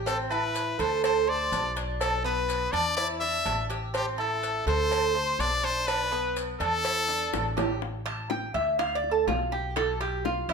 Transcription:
Already playing: A1
0.06 C4 A4, cowbell, low agogo, maracas
0.30 E4 B4, low agogo, maracas
0.55 cowbell, maracas
0.79 D2 A4 C5, cowbell, low agogo, maracas
1.04 C5, cowbell, low agogo, maracas
1.27 C5 D5
1.52 B1, cowbell, low timbale, low agogo, maracas
1.76 D4, cowbell, maracas
2.01 A4, cowbell, low agogo, maracas
2.24 B3 B4, maracas
2.49 cowbell, low agogo, maracas
2.73 E2 D4 D5, cowbell, low agogo, maracas
2.97 E4 D5, cowbell, maracas
3.21 D4 E5
3.45 A1, cowbell, low timbale, low agogo, maracas
3.70 G4, cowbell, maracas
3.94 C4 G4, cowbell, low agogo, maracas
4.18 E4 A4, low agogo
4.43 cowbell, maracas
4.66 D2 A4 C5, cowbell, low agogo, maracas
4.91 cowbell, low agogo, maracas
5.15 C5
5.39 B1 D5, cowbell, low timbale, low agogo, maracas
5.64 D4 C5, cowbell, maracas
5.87 B4, cowbell, low agogo, maracas
6.12 B3, maracas
6.36 cowbell, low agogo, maracas
6.60 E2 D4 A4, cowbell, low agogo, maracas
6.85 E4, cowbell, maracas
7.08 D4, maracas
7.33 A1, cowbell, high bongo, low timbale, low agogo, maracas
7.57 G4, cowbell, low bongo, high timbale, maracas
7.82 high bongo
8.06 A5, high timbale
8.30 G5, high bongo
8.54 D2 E5, high bongo, high timbale
8.79 F5, high bongo, high timbale
8.95 D5
9.04 high bongo
9.11 A4
9.27 B1 F4, high bongo, low bongo, high timbale
9.52 G4, high bongo
9.76 A4, high bongo, high timbale
10.01 G4, high timbale
10.25 F4, high bongo
10.49 E2 E4, high bongo, high timbale

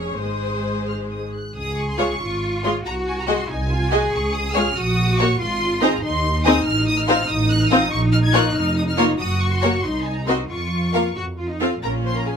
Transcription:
Already playing: F1 F2 C#4 G#4 C#5 C#6
0.18 G#1 G#2 G#3 G#4 C5 D#6
0.87 F6
1.10 D#6
1.34 F#6
1.55 C#2 G#4 D#6
1.78 C#6
1.89 C6
1.98 G#3 F4 C#5 C#6
2.21 G#1 F4
2.63 G#3 F4 C#5 C6
2.85 C2 F#4 A#5
3.06 G#5
3.19 A#5
3.27 G#3 F#4 G#4 D#5 C6
3.49 C2 D#4 G#5
3.70 F4
3.91 G#3 F#4 G#4 D#5
4.12 C#2 C#6
4.33 D#6
4.54 G#3 F4 G#4 C#5 F6
4.76 A#1 F#4 D#6
5.18 A#3 F#4 C#5 C#6
5.40 G#1 F4 C6
5.82 C4 D#4 G#4 C5 A#5
6.02 D#2 D#4 C6
6.44 C4 D#4 G#4 C5 D#6
6.65 A1 F6
6.87 D#6
6.97 F6
7.07 C4 D#4 F4 C5 F6
7.29 A1 D#6
7.51 F#6
7.62 F6
7.69 C4 D#4 F4 C5 D#6
7.91 A#1 C#6
8.12 F6
8.23 G#6
8.33 A#3 F4 A#4 C#5 F#6
8.55 F1 F6
8.77 D#6
8.89 F6
8.97 A#3 F4 A#4 C#5
9.19 F#1 F#4 D#6
9.41 C#6
9.51 C6
9.61 A#3 F#4 A#4 C#5 C#6
9.82 C2 D#4 C6
10.04 G#5
10.15 A#5
10.26 C4 F#4 A#4 D#5 C6
10.49 F2 F4 C#6
10.93 A#3 F4 A#4 F5
11.16 F2 F#4
11.38 F4
11.50 D#4
11.60 C4 F4 A4 F5
11.83 A#1 A#2 C#4 F4 A#4 A#5
12.04 C5 C6
12.15 A#4 A#5
12.26 G#4 G#5

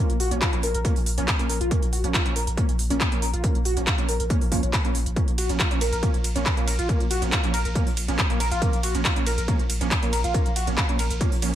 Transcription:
0.00 F3 A#3 C#4
0.10 A#1 A#3, closed hi-hat
0.20 A#1 F#4, open hi-hat
0.31 A#1 F3 A#3 C#4, closed hi-hat
0.42 F4, kick, clap, closed hi-hat
0.53 A#1 F3 A#3 C#4, closed hi-hat
0.63 A#1 A#4, open hi-hat
0.74 A#1 A#4, closed hi-hat
0.85 F3 A#3 C#4, kick, closed hi-hat
0.96 A#1, open hi-hat
1.06 A#1, open hi-hat
1.18 A#1 F3 A#3 C#4, closed hi-hat
1.28 kick, clap, closed hi-hat
1.39 A#1 F3 A#3 C#4, closed hi-hat
1.50 A#1 A#4, open hi-hat
1.61 A#1 F4, closed hi-hat
1.71 F3 A#3 C#4, kick, closed hi-hat
1.82 A#1 A#3, closed hi-hat
1.93 A#1 F#4, open hi-hat
2.04 A#1 F3 A#3 C#4, closed hi-hat
2.14 F4, kick, clap, closed hi-hat
2.26 A#1 F3 A#3 C#4, closed hi-hat
2.36 A#1 A#4, open hi-hat
2.47 A#1 A#4, closed hi-hat
2.57 F3 A#3 C#4, kick, closed hi-hat
2.69 A#1, closed hi-hat
2.79 A#1, open hi-hat
2.90 A#1 F3 A#3 C#4, closed hi-hat
3.01 kick, clap, closed hi-hat
3.12 A#1 F3 A#3 C#4, closed hi-hat
3.22 A#1 A#4, open hi-hat
3.33 A#1 F4, closed hi-hat
3.44 F3 A#3 C#4, kick, closed hi-hat
3.55 A#1 A#3, closed hi-hat
3.65 A#1 F#4, open hi-hat
3.77 A#1 F3 A#3 C#4, closed hi-hat
3.87 F4, kick, clap, closed hi-hat
3.98 A#1 F3 A#3 C#4, closed hi-hat
4.09 A#1 A#4, open hi-hat
4.20 A#1 A#4, closed hi-hat
4.30 F3 A#3 C#4, kick, closed hi-hat
4.41 A#1, open hi-hat
4.52 A#1 F3 A#3 C#4 F4, kick, open hi-hat
4.63 A#1 C#4, closed hi-hat
4.73 kick, clap, closed hi-hat
4.85 A#1 F3 A#3 C#4, closed hi-hat
4.95 A#1, open hi-hat
5.06 A#1, closed hi-hat
5.16 F3 A#3 C#4, kick, closed hi-hat
5.28 A#1 A#3, closed hi-hat
5.38 A#1 F#4, open hi-hat, ride
5.49 A#1 F3 A#3 C#4, closed hi-hat
5.60 F4, kick, clap, closed hi-hat
5.71 A#1 F3 A#3 C#4, closed hi-hat
5.81 A#1 A#4, open hi-hat, ride
5.92 A#1 A#4, closed hi-hat
6.03 F3 A#3 C#4, kick, closed hi-hat
6.14 A#1, closed hi-hat
6.24 A#1, open hi-hat, ride
6.36 A#1 F3 A#3 C#4, closed hi-hat
6.46 kick, clap, closed hi-hat
6.57 A#1 F3 A#3 C#4, closed hi-hat
6.67 A#1 A#4, open hi-hat, ride
6.79 A#1 F4, closed hi-hat
6.89 F3 A#3 C#4, kick, closed hi-hat
7.00 A#1 A#3, closed hi-hat
7.11 A#1 F#4, open hi-hat, ride
7.22 A#1 F3 A#3 C#4, closed hi-hat
7.32 F4, kick, clap, closed hi-hat
7.44 A#1 F3 A#3 C#4, closed hi-hat
7.54 A#1 A#4, open hi-hat, ride
7.65 A#1 A#4, closed hi-hat
7.75 F3 A#3 C#4, kick, closed hi-hat
7.87 A#1, open hi-hat
7.97 A#1, open hi-hat, ride
8.08 A#1 F3 A#3 C#4, closed hi-hat
8.19 kick, clap, closed hi-hat
8.30 A#1 F3 A#3 C#4, closed hi-hat
8.40 A#1 A#4, open hi-hat, ride
8.51 A#1 F4, closed hi-hat
8.62 F3 A#3 C#4, kick, closed hi-hat
8.73 A#1 A#3, closed hi-hat
8.83 A#1 F#4, open hi-hat, ride
8.95 A#1 F3 A#3 C#4, closed hi-hat
9.05 F4, kick, clap, closed hi-hat
9.16 A#1 F3 A#3 C#4, closed hi-hat
9.27 A#1 A#4, open hi-hat, ride
9.38 A#1 A#4, closed hi-hat
9.48 F3 A#3 C#4, kick, closed hi-hat
9.59 A#1, closed hi-hat
9.70 A#1, open hi-hat, ride
9.81 A#1 F3 A#3 C#4, closed hi-hat
9.91 kick, clap, closed hi-hat
10.03 A#1 F3 A#3 C#4, closed hi-hat
10.13 A#1 A#4, open hi-hat, ride
10.24 A#1 F4, closed hi-hat
10.34 F3 A#3 C#4, kick, closed hi-hat
10.46 A#1 A#3, closed hi-hat
10.56 A#1 F#4, open hi-hat, ride
10.67 A#1 F3 A#3 C#4, closed hi-hat
10.78 F4, kick, clap, closed hi-hat
10.89 A#1 F3 A#3 C#4, closed hi-hat
10.99 A#1 A#4, open hi-hat, ride
11.10 A#1 A#4, closed hi-hat
11.21 F3 A#3 C#4, kick, closed hi-hat
11.32 A#1, open hi-hat
11.42 A#1 F3 A#3 C#4, open hi-hat, ride

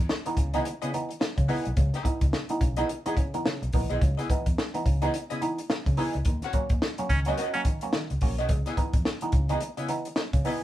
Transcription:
0.09 muted hollow-body jazz guitar stroke, snare
0.25 E3 B3 D#4, muted hollow-body jazz guitar stroke, closed hi-hat
0.37 C#2 C#3, kick, closed hi-hat
0.54 E3 B3 D#4 E4 G#4 D#5, closed hi-hat
0.65 B3 D#4, muted hollow-body jazz guitar stroke, closed hi-hat
0.82 C#3 B3 E4 G#4 D#5, closed hi-hat
0.92 E3 B3 D#4, muted hollow-body jazz guitar stroke, closed hi-hat
1.09 muted hollow-body jazz guitar stroke, closed hi-hat
1.20 B3 D#4, muted hollow-body jazz guitar stroke, snare
1.36 C#3, muted hollow-body jazz guitar stroke, kick, closed hi-hat
1.48 E3 B3 D#4 E4 G#4 D#5, open hi-hat
1.65 B1, muted hollow-body jazz guitar stroke, closed hi-hat
1.77 C#2 C#3, muted hollow-body jazz guitar stroke, kick, closed hi-hat
1.93 B3 D#4 E4 G#4 E5, snare, closed hi-hat
2.04 E3 B3 D#4, muted hollow-body jazz guitar stroke, kick, closed hi-hat
2.21 C#2, muted hollow-body jazz guitar stroke, kick, closed hi-hat
2.33 muted hollow-body jazz guitar stroke, snare
2.49 E3 B3 D#4, muted hollow-body jazz guitar stroke, closed hi-hat
2.61 B1 C#3, kick, closed hi-hat
2.76 E3 B3 D#4 E4 G#4 D#5, closed hi-hat
2.89 muted hollow-body jazz guitar stroke, closed hi-hat
3.06 E3 B3 D#4 E4 G#4 D#5, closed hi-hat
3.16 C#3, muted hollow-body jazz guitar stroke, kick, closed hi-hat
3.34 E3 B3 D#4, muted hollow-body jazz guitar stroke, closed hi-hat
3.45 C#3, muted hollow-body jazz guitar stroke, snare
3.62 B1, muted hollow-body jazz guitar stroke, closed hi-hat
3.73 A#1 E3 B3 D#4, kick, open hi-hat
3.89 B1 B3 D#4 E4 G#4 D#5, closed hi-hat
4.01 C#2 C#3, muted hollow-body jazz guitar stroke, kick, closed hi-hat
4.17 B3 D#4 E4 G#4 D#5, snare, closed hi-hat
4.29 E3 B3 D#4, muted hollow-body jazz guitar stroke, kick, closed hi-hat
4.46 E2, muted hollow-body jazz guitar stroke, kick, closed hi-hat
4.58 muted hollow-body jazz guitar stroke, snare
4.74 E3 B3 D#4, muted hollow-body jazz guitar stroke, closed hi-hat
4.85 C#2 C#3, kick, closed hi-hat
5.02 E3 B3 D#4 E4 G#4 D#5, closed hi-hat
5.14 B3 D#4, muted hollow-body jazz guitar stroke, closed hi-hat
5.30 C#3 B3 E4 G#4 D#5, closed hi-hat
5.41 E3 B3 D#4, muted hollow-body jazz guitar stroke, closed hi-hat
5.58 muted hollow-body jazz guitar stroke, closed hi-hat
5.70 B3 D#4, muted hollow-body jazz guitar stroke, snare
5.86 C#3, muted hollow-body jazz guitar stroke, kick, closed hi-hat
5.97 E3 B3 D#4 E4 G#4 D#5, open hi-hat
6.14 C#2, muted hollow-body jazz guitar stroke, closed hi-hat
6.25 D#2 D#3, muted hollow-body jazz guitar stroke, kick, closed hi-hat
6.42 A#3 C#4 F#4 A#4 F#5, snare, closed hi-hat
6.53 F#3 A#3 C#4, muted hollow-body jazz guitar stroke, kick, closed hi-hat
6.69 D#2, muted hollow-body jazz guitar stroke, kick, closed hi-hat
6.82 muted hollow-body jazz guitar stroke, snare
6.98 F#3 A#3 C#4, muted hollow-body jazz guitar stroke, closed hi-hat
7.10 C#2 D#3 C#4, kick, closed hi-hat
7.25 F#3 A#3 C#4 F#4 A#4 D#5, closed hi-hat
7.38 C#4 F#4 A#4 D#5, closed hi-hat
7.53 F#3 A#3 C#4, closed hi-hat
7.65 D#3, muted hollow-body jazz guitar stroke, kick, closed hi-hat
7.81 F#3 A#3 C#4, muted hollow-body jazz guitar stroke, closed hi-hat
7.93 D#3, muted hollow-body jazz guitar stroke, snare
8.10 C#2, muted hollow-body jazz guitar stroke, closed hi-hat
8.21 A#1 F#3 A#3 C#4, kick, open hi-hat
8.38 B1 C#4 F#4 A#4 D#5, closed hi-hat
8.49 C#2 C#3, muted hollow-body jazz guitar stroke, kick, closed hi-hat
8.66 B3 D#4 E4 G#4 D#5, snare, closed hi-hat
8.77 E3 B3 D#4, muted hollow-body jazz guitar stroke, kick, closed hi-hat
8.93 E2, muted hollow-body jazz guitar stroke, kick, closed hi-hat
9.05 muted hollow-body jazz guitar stroke, snare
9.21 E3 B3 D#4, muted hollow-body jazz guitar stroke, closed hi-hat
9.32 C#2 C#3, kick, closed hi-hat
9.49 E3 B3 D#4 E4 G#4 D#5, closed hi-hat
9.60 B3 D#4, muted hollow-body jazz guitar stroke, closed hi-hat
9.77 C#3 B3 E4 G#4 D#5, closed hi-hat
9.88 E3 B3 D#4, muted hollow-body jazz guitar stroke, closed hi-hat
10.05 muted hollow-body jazz guitar stroke, closed hi-hat
10.16 B3 D#4, muted hollow-body jazz guitar stroke, snare
10.33 C#3, muted hollow-body jazz guitar stroke, kick, closed hi-hat
10.45 E3 B3 D#4 E4 G#4 D#5, open hi-hat

